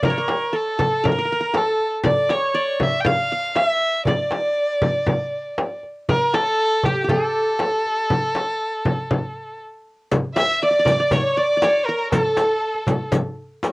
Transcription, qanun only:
0, 0, Header, 1, 2, 480
1, 0, Start_track
1, 0, Tempo, 504202
1, 31, Time_signature, 4, 2, 24, 8
1, 13062, End_track
2, 0, Start_track
2, 0, Title_t, "Qanun"
2, 0, Program_c, 0, 107
2, 0, Note_on_c, 0, 74, 51
2, 46, Note_on_c, 0, 70, 69
2, 96, Note_on_c, 0, 73, 56
2, 153, Note_off_c, 0, 74, 0
2, 166, Note_off_c, 0, 70, 0
2, 170, Note_on_c, 0, 70, 61
2, 504, Note_on_c, 0, 69, 64
2, 561, Note_off_c, 0, 70, 0
2, 748, Note_off_c, 0, 69, 0
2, 752, Note_on_c, 0, 69, 72
2, 988, Note_on_c, 0, 70, 70
2, 1045, Note_off_c, 0, 69, 0
2, 1059, Note_off_c, 0, 70, 0
2, 1063, Note_on_c, 0, 70, 48
2, 1070, Note_off_c, 0, 73, 0
2, 1125, Note_off_c, 0, 70, 0
2, 1128, Note_on_c, 0, 70, 59
2, 1189, Note_off_c, 0, 70, 0
2, 1193, Note_on_c, 0, 70, 46
2, 1255, Note_off_c, 0, 70, 0
2, 1259, Note_on_c, 0, 70, 54
2, 1334, Note_off_c, 0, 70, 0
2, 1338, Note_on_c, 0, 70, 49
2, 1463, Note_on_c, 0, 69, 69
2, 1520, Note_off_c, 0, 70, 0
2, 1948, Note_on_c, 0, 74, 68
2, 2189, Note_on_c, 0, 73, 77
2, 2246, Note_off_c, 0, 74, 0
2, 2422, Note_on_c, 0, 74, 76
2, 2479, Note_off_c, 0, 73, 0
2, 2578, Note_off_c, 0, 69, 0
2, 2914, Note_on_c, 0, 77, 88
2, 3157, Note_off_c, 0, 77, 0
2, 3160, Note_on_c, 0, 77, 74
2, 3360, Note_off_c, 0, 74, 0
2, 3387, Note_on_c, 0, 76, 77
2, 3444, Note_off_c, 0, 77, 0
2, 3884, Note_on_c, 0, 74, 69
2, 4262, Note_off_c, 0, 76, 0
2, 5521, Note_off_c, 0, 74, 0
2, 5798, Note_on_c, 0, 70, 77
2, 6033, Note_on_c, 0, 69, 81
2, 6091, Note_off_c, 0, 70, 0
2, 6529, Note_on_c, 0, 67, 78
2, 6700, Note_off_c, 0, 67, 0
2, 6704, Note_on_c, 0, 67, 49
2, 6748, Note_off_c, 0, 69, 0
2, 6752, Note_on_c, 0, 69, 74
2, 7899, Note_off_c, 0, 67, 0
2, 9113, Note_off_c, 0, 69, 0
2, 9863, Note_on_c, 0, 76, 87
2, 10118, Note_on_c, 0, 74, 78
2, 10190, Note_off_c, 0, 74, 0
2, 10193, Note_on_c, 0, 74, 54
2, 10272, Note_off_c, 0, 74, 0
2, 10276, Note_on_c, 0, 74, 62
2, 10327, Note_off_c, 0, 74, 0
2, 10331, Note_on_c, 0, 74, 60
2, 10390, Note_off_c, 0, 74, 0
2, 10394, Note_on_c, 0, 74, 76
2, 10468, Note_off_c, 0, 74, 0
2, 10472, Note_on_c, 0, 74, 67
2, 10598, Note_on_c, 0, 73, 77
2, 10655, Note_off_c, 0, 74, 0
2, 10738, Note_off_c, 0, 76, 0
2, 10827, Note_on_c, 0, 74, 68
2, 10884, Note_off_c, 0, 73, 0
2, 11010, Note_off_c, 0, 74, 0
2, 11014, Note_on_c, 0, 74, 60
2, 11077, Note_on_c, 0, 73, 78
2, 11135, Note_off_c, 0, 74, 0
2, 11316, Note_on_c, 0, 70, 78
2, 11547, Note_on_c, 0, 69, 66
2, 11604, Note_off_c, 0, 70, 0
2, 12048, Note_off_c, 0, 73, 0
2, 12662, Note_off_c, 0, 69, 0
2, 13062, End_track
0, 0, End_of_file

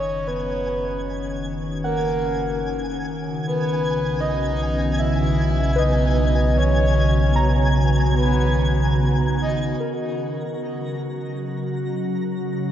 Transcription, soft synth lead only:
0, 0, Header, 1, 2, 480
1, 0, Start_track
1, 0, Tempo, 788436
1, 158, Time_signature, 4, 2, 24, 8
1, 3998, Tempo, 804290
1, 7669, End_track
2, 0, Start_track
2, 0, Title_t, "Soft synth lead"
2, 0, Program_c, 0, 80
2, 0, Note_on_c, 0, 73, 99
2, 166, Note_on_c, 0, 71, 97
2, 176, Note_off_c, 0, 73, 0
2, 885, Note_off_c, 0, 71, 0
2, 1116, Note_on_c, 0, 70, 112
2, 1574, Note_off_c, 0, 70, 0
2, 2112, Note_on_c, 0, 71, 104
2, 2560, Note_on_c, 0, 75, 101
2, 2569, Note_off_c, 0, 71, 0
2, 3034, Note_off_c, 0, 75, 0
2, 3037, Note_on_c, 0, 76, 112
2, 3519, Note_on_c, 0, 75, 107
2, 3528, Note_off_c, 0, 76, 0
2, 4003, Note_on_c, 0, 73, 101
2, 4012, Note_off_c, 0, 75, 0
2, 4715, Note_off_c, 0, 73, 0
2, 4957, Note_on_c, 0, 71, 109
2, 5418, Note_off_c, 0, 71, 0
2, 5698, Note_on_c, 0, 75, 120
2, 5916, Note_off_c, 0, 75, 0
2, 7669, End_track
0, 0, End_of_file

